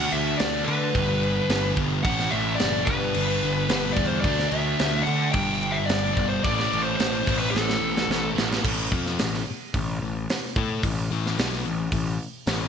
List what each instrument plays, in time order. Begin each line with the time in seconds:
Already playing: distorted electric guitar D3 A3 D4, lead electric guitar F#5
0.12 picked electric bass D2, lead electric guitar E5, crash
0.38 picked electric bass D2, lead electric guitar D5, snare, crash
0.64 distorted electric guitar D3 A3 D4, picked electric bass D3, lead electric guitar B4, crash
0.94 picked electric bass G1, distorted electric guitar G2 D3 G3, kick, crash
1.23 crash
1.49 picked electric bass G1, snare, crash
1.77 picked electric bass G1, distorted electric guitar G2 D3 G3, kick, crash
2.03 picked electric bass A1, distorted electric guitar A2 E3, lead electric guitar F#5, kick, crash
2.07 distorted electric guitar A3
2.19 snare
2.31 picked electric bass A1, lead electric guitar E5, crash
2.56 lead electric guitar D5, crash
2.60 picked electric bass F#1, snare
2.85 picked electric bass G1, distorted electric guitar G2, lead electric guitar B4, kick, crash
2.90 distorted electric guitar D3 G3
3.14 picked electric bass G1, crash
3.43 picked electric bass G1, crash
3.69 picked electric bass G1, distorted electric guitar G2 D3 G3, snare, crash
3.93 lead electric guitar D5, crash
3.97 picked electric bass E2, distorted electric guitar G2 D3 G3, kick
4.07 lead electric guitar C5
4.21 picked electric bass D2, distorted electric guitar D3, lead electric guitar D5, kick, crash
4.25 distorted electric guitar A3 D4
4.39 snare
4.48 picked electric bass D2, lead electric guitar E5, crash
4.79 picked electric bass D2, snare, crash
5.03 distorted electric guitar D4, lead electric guitar F#5, crash
5.07 picked electric bass D3, distorted electric guitar D3 A3
5.32 picked electric bass G1, distorted electric guitar G2 D3, lead electric guitar G5, kick, crash
5.37 distorted electric guitar G3
5.62 crash
5.72 lead electric guitar E5
5.86 lead electric guitar D5, crash
5.90 picked electric bass G1, snare
6.14 picked electric bass G1, lead electric guitar D5, kick, crash
6.18 distorted electric guitar G2 D3 G3
6.29 lead electric guitar C5
6.43 picked electric bass A1, distorted electric guitar A2 E3 A3, lead electric guitar D5, kick, crash
6.60 snare
6.73 picked electric bass A1, crash
6.83 lead electric guitar C5
6.96 picked electric bass A1, lead electric guitar C5, crash
7.00 snare
7.26 picked electric bass A1, distorted electric guitar A2 E3 A3, kick, crash
7.38 lead electric guitar B4
7.51 picked electric bass A1, lead electric guitar A4
7.56 snare
7.70 snare
7.81 picked electric bass A1
7.97 snare
8.09 picked electric bass A1, distorted electric guitar A2 E3 A3, snare
8.35 picked electric bass A1, distorted electric guitar A2 E3 A3, snare
8.53 snare
8.64 picked electric bass A1, distorted electric guitar A2 E3 A3, kick, crash
8.92 picked electric bass F2, distorted electric guitar F3 C4 F4, kick
9.06 snare
9.19 picked electric bass A1, distorted electric guitar A2 E3, snare, open hi-hat
9.34 snare
9.47 muted picked electric bass stroke, muted distorted electric guitar stroke
9.74 picked electric bass A1, distorted electric guitar A2 E3, kick, open hi-hat
10.01 picked electric bass A1, distorted electric guitar A2 E3
10.30 snare, open hi-hat
10.56 picked electric bass A2, distorted electric guitar A3 E4 A4, kick
10.83 picked electric bass A1, distorted electric guitar A2 E3, kick, open hi-hat
11.11 picked electric bass A1, distorted electric guitar A2 E3 A3
11.26 snare
11.39 picked electric bass B1, distorted electric guitar B2 F#3 B3, snare, open hi-hat
11.53 snare
11.65 picked electric bass A1, distorted electric guitar A2 E3
11.92 picked electric bass A1, distorted electric guitar A2 E3, kick, open hi-hat
12.47 picked electric bass A1, distorted electric guitar A2 E3 A3, snare, open hi-hat